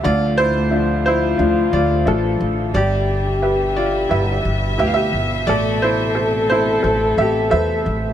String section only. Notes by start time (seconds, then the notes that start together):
Already playing: A3
0.05 D3 F3
2.76 B2 G3 E5
5.48 C3 A3